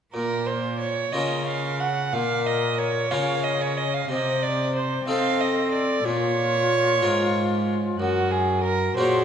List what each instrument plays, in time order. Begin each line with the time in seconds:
0.14 harpsichord A#2, cello A#2, violin A#4
0.47 violin C5
0.80 violin C#5
1.12 harpsichord C#3 C#4 F4 A#4, cello C#3, violin D#5
1.47 violin F5
1.80 violin F#5
2.12 cello A#2, harpsichord A#2, flute A#4, violin F5
2.47 violin D#5
2.79 violin C#5
3.11 harpsichord C#3 C#4 F4 A#4, cello C#3, flute C#5, violin F5
3.44 violin D#5
3.62 violin C#5
3.78 violin D#5
3.94 violin F5
4.09 cello C3, harpsichord C3, flute C5, violin D#5
4.43 violin D5
4.75 violin C5
5.07 cello C4, harpsichord C4 D#4 A4, flute A4, violin F5
5.40 violin D#5
5.72 violin D5
6.05 cello A#2, harpsichord A#2, flute F4, violin C#5
7.02 cello G#2, harpsichord G#2 F4 A#4
7.99 cello F#2, harpsichord F#2, violin F#4, flute A#4
8.31 violin G#4
8.64 violin A#4
8.97 cello A#2, harpsichord A#2 C#4 F#4 A#4, flute G#4, violin C5